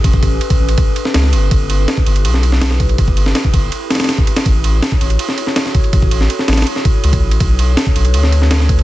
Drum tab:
RD |x---x---x-x---x-x---x---x---x---|x---x---x---x-x-x---x---x---x-x-|x---x---x---x---x---xxxxx---x-x-|x---x---x---x-x-x---x---x---x-x-|
SD |----------------------o-o-o-----|--------o---------o---o-o-o-----|------o-o-----------ooooo-----o-|--------o---------o---o-o-o-----|
BD |o-o-o-----o-----o---------------|o---------o-----------------o---|o-o-------o-o-------------o-----|o---------o-----------------o---|

RD |x---x---x---xxxxx---x---x-x---x-|x---x---x---x-x-x---x---x---x-x-|
SD |------o---o-oooo--o-------------|--------o---------o---o-o-o-----|
BD |o-o-----------------o-----o-----|o---------o-----------------o---|